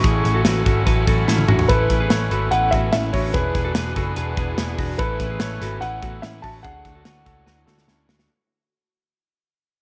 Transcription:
Already playing: A3 C#4 C#6
0.03 A1 F#3 A3 C#4 E4 F#4 G#4, kick, closed hi-hat
0.24 A1 C#4 E4 F#4, closed hi-hat
0.34 F#4 A4
0.45 A1 A3 C#4 E4 F#4 B4, snare, closed hi-hat
0.65 G#1 C#4 E4 F#4 A4, kick, closed hi-hat
0.86 A1 A3 C#4 E4 F#4 B4, kick, closed hi-hat
1.07 A1 C#4 E4 F#4 A4, kick, closed hi-hat
1.27 A1 A3 C#4 E4 F#4, snare
1.38 high tom
1.47 A1 C#4 D4 E4 F#4, mid tom
1.59 floor tom
1.68 A1 A3 B3 C#4 E4 A4 B4, kick, closed hi-hat
1.90 A1 C#4 E4 B4, kick, closed hi-hat
2.00 G#4 B4
2.10 A1 A3 C#4 E4 A4 B4 C#5, snare, closed hi-hat
2.31 G#1 C#4 E4 F#4 A4 B4, closed hi-hat
2.51 A1 A3 C#4 E4 B4 F#5, closed hi-hat
2.71 A1 C#4 E4 F#4 A4 B4 E5, kick, closed hi-hat
2.92 A1 A3 C#4 E4 B4 E5, snare, closed hi-hat
3.13 A1 C#4 D4 E4 F#4 B4 C#5, kick, open hi-hat
3.33 E1 E3 B3 D4 E4 F#4 G#4 B4, kick, closed hi-hat
3.54 E1 D4 G#4 B4, kick, closed hi-hat
3.65 F#4 A4
3.74 E1 E3 D4 G#4 B4, snare, closed hi-hat
3.96 F#1 D4 F#4 G#4 A4 B4, kick, closed hi-hat
4.16 E1 E3 D4 G#4 B4, closed hi-hat
4.36 E1 D4 E4 G#4 B4, kick, closed hi-hat
4.57 E1 E3 B3 D4 E4 G#4 B4, snare, closed hi-hat
4.78 E1 D4 F#4 G#4 B4, kick, open hi-hat
4.98 A1 A3 B3 C#4 E4 A4 B4, kick, closed hi-hat
5.19 A1 C#4 E4 B4, kick, closed hi-hat
5.30 G#4 B4
5.39 A1 A3 C#4 E4 A4 B4 C#5, snare, closed hi-hat
5.60 G#1 C#4 E4 F#4 A4 B4, snare, closed hi-hat
5.81 A1 A3 C#4 E4 B4 F#5, closed hi-hat
6.02 A1 C#4 E4 F#4 A4 B4, kick, closed hi-hat
6.22 A1 A3 C#4 E4 B4 E5, snare, closed hi-hat
6.42 A1 C#4 D4 F#4 B4 A5, kick, open hi-hat
6.46 E4
6.63 D2 D3 F#3 A3 D4 E4 F#4 G#4 C#5 F#5, kick, closed hi-hat
6.84 D2 A3 D4 F#4 C#5, kick, closed hi-hat
6.95 F#4 A4
7.04 D2 A3 D4 F#4 B4 C#5, snare, closed hi-hat
7.25 C#2 A3 D4 F#4 A4 C#5, kick, closed hi-hat
7.46 D2 D3 F#3 A3 D4 F#4 B4 C#5, snare
7.66 D2 A3 D4 F#4 A4 C#5, snare
7.78 snare
7.87 D2 A3 C#4 D4 E4 F#4 C#5, snare
8.08 D2 A3 D4 F#4 C#5, snare
8.19 snare

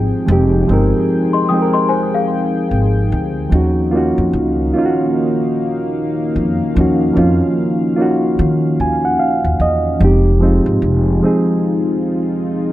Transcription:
Already playing: G#1 F3 G#3 C4 D#4 G#4 G5
0.26 F1 F3 G#3 C4
0.31 D#4 G4
0.67 G1 F3 G#3 C4 D#4
0.73 A#4
1.33 D#5 C6
1.49 F3 G#3 C4 G5 D#6
1.54 D#4 G#4
1.62 A#4
1.73 D#5 C6
1.89 C5 G#5
2.15 G#4 F5
2.71 G#1
3.12 D2
3.50 D#2 D#3 F3 A#3 C#4 D#4 F5
3.55 F#4
3.91 A#3 C#4 F4
3.95 D#4 F#4
4.18 F2
4.33 C#2
4.74 A#3 C#4 D#4 F4
4.79 F4
4.86 F#4
6.36 F2
6.75 D#2 F3 A#3 C#4
6.80 D#4 F#4
7.14 F2 F3 A#3 C#4 D#4
7.19 F4
7.96 A#3 C#4 D#4 F4
8.02 F#4
8.39 D#3
8.80 D#2 G#5
9.05 F#5
9.20 F5
9.44 D#2
9.60 E2 D#5
9.99 F1 F3 G#3 C4 D#4 F4 G#4
10.03 D#4 G4
10.39 F3 G#3 C4 D#4
10.45 F4
10.66 G#1
10.82 F1
11.21 F3 G#3 C4
11.25 D#4 G#4

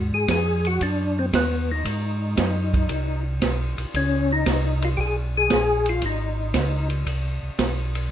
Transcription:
Already playing: D#2 G#2
0.14 G#4
0.28 F2 G#4, kick, snare, hi-hat pedal, ride
0.65 F#4, ride
0.81 F#2 D4, kick, ride
1.19 C4
1.33 D#2 B3, kick, snare, hi-hat pedal, ride
1.72 D#4
1.85 G#2, kick, ride
2.37 F#2, kick, snare, hi-hat pedal, ride
2.74 kick, ride
2.89 C2, kick, ride
3.42 B1, kick, snare, hi-hat pedal, ride
3.78 B1, ride
3.94 C#2 C#4, kick, ride
4.33 D#4
4.46 C2, kick, snare, hi-hat pedal, ride
4.82 F4, ride
4.97 B1 G4 G#4, kick
5.37 G#4
5.50 A#1, kick, snare, hi-hat pedal, ride
5.86 F4, ride
6.02 G#1, kick, ride
6.06 D#4
6.54 C#2, kick, snare, hi-hat pedal, ride
6.90 ride
7.06 C2, kick, ride
7.43 C2
7.59 B1, kick, snare, hi-hat pedal, ride
7.95 ride

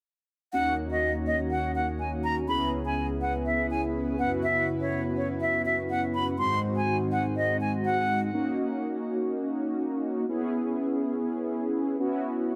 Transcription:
0.53 D#2 D#3 A#3 C#4 D#4 F#4 C#5 F#5
0.91 D#5
1.27 D#5
1.51 F#5
1.75 F#5
2.00 G#5
2.24 A#5
2.48 C#2 C#3 B3 C#4 E4 G#4 B4 B5
2.86 G#5
3.22 F#5
3.46 E5
3.70 G#5
4.19 F#2 B3 C#4 E4 F#4 F#5
4.44 E5
4.81 C#5
5.17 C#5
5.41 E5
5.66 E5
5.90 F#5
6.14 B5
6.38 G#2 D#3 G#3 C4 D#4 F#4 C5 C6
6.76 G#5
7.12 F#5
7.36 D#5
7.61 G#5
7.85 F#5
8.33 A#3 C#4 D#4 F#4
10.29 B3 C#4 E4 G#4
11.99 B3 C#4 E4 F#4

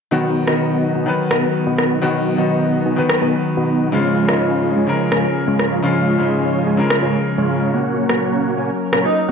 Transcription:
0.11 D#3 F#3 B3 D#4 F#4 D#5 F#5
0.47 D#3 F#3 B3 D#4 F#4 D#5 F#5, cross-stick
0.95 B3 D#4 F#4 D#5 G#5
1.06 D#3 F#3 B3 B4
1.31 B3 D#4 F#4 D#5 G#5, cross-stick
1.67 B3 D#4 F#4 D#5 F#5
1.78 cross-stick
2.02 D#3 F#3 B3 D#4 F#4 D#5 F#5
2.37 D#3 F#3 B3 D#4 F#4 D#5 F#5
2.86 B3 D#4 F#4 D#5 G#5
2.96 D#3 F#3 B3 B4
3.09 cross-stick
3.21 B3 D#4 F#4 D#5 G#5
3.57 B3 D#4 F#4 D#5 F#5
3.92 C#3 F3 G#3 C#4 F4 G#4 C#5 F5
4.28 C#3 F3 G#3 C#4 D#4 F4 C#5 F5, cross-stick
4.76 G#3 C#4 F4 C#5 G#5
4.87 C#3 F3 G#3 A#4
5.12 G#3 C#4 F4 C#5 G#5, cross-stick
5.47 G#3 C#4 F4 C#5 F5
5.59 cross-stick
5.82 C#3 F3 G#3 C#4 F4 C#5 F5
6.18 C#3 F3 G#3 C#4 D#4 F4 C#5 F5
6.67 G#3 C#4 F4 C#5 G#5
6.77 C#3 F3 G#3 A#4
6.90 cross-stick
7.02 G#3 C#4 F4 C#5 G#5
7.38 G#3 C#4 F4 C#5 F5
7.74 F#3 A#3 C#4 F#4 A#4 C#5 F#5
8.09 A#3 C#4 F#4 C#5 F#5, cross-stick
8.57 A#3 C#4 F#4 C#5 G#5
8.93 A#3 C#4 F#4 C#5 G#5, cross-stick
9.05 D#5
9.28 A#3 C#4 F#4 C#5 F#5

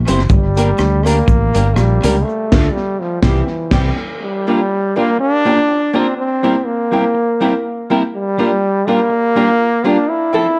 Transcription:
0.07 F#1 F#2 C4 E4 G4 C5, closed hi-hat, cabasa
0.19 cross-stick
0.29 G1 G2 G3, kick, cabasa
0.56 A#3 D4 G4 A#4, closed hi-hat, cabasa
0.78 D2 D3, cross-stick, cabasa
1.05 A#3 D4 G4 A#4, closed hi-hat, cabasa
1.28 A1 A2, muted clean electric guitar stroke, kick, cabasa
1.54 G1 G2 A#3 D4 G4 A#4, closed hi-hat, cabasa
1.76 A#1 A#2 G3 G4 A#4, cross-stick, cabasa
2.03 C#2 C#3 A#3 D4 G4 A#4, closed hi-hat, cabasa
2.24 A3
2.52 D2 A3 D4 F4 A4, kick, snare, crash
2.73 G3
3.00 F3
3.22 C2 E3 G3 C4 E4 G4, kick, snare
3.71 C2 G3 C4 E4 G4, kick, snare, crash
4.22 G3
4.47 A#3 D4 F4 G4 A#4
4.96 A#3 D4 F4 G4 A#4
5.18 D4, muted clean electric guitar stroke
5.45 A#3 D4 F4 G4 A#4
5.67 F4 G4
5.93 A#3 C4 D4 F4 G4 A#4
6.17 C4
6.43 G3 A#3 C4 E4 G4 A#4
6.66 A#3
6.91 G3 A#3 C4 E4 G4 A#4
7.14 muted clean electric guitar stroke
7.40 G3 A#3 C4 E4 G4 A#4
7.90 G3 A#3 C4 E4 G4 A#4
8.13 G3
8.38 G3 A#3 D4 F4 G4 A#4
8.87 G3 A#3 D4 F4 G4 A#4
9.09 muted clean electric guitar stroke
9.35 G3 A#3 D4 F4 G4 A#4
9.58 F4 G4
9.84 G3 A#3 D4 F4 G4 A#4
10.10 E4
10.33 F3 C4 E4 F4 A4

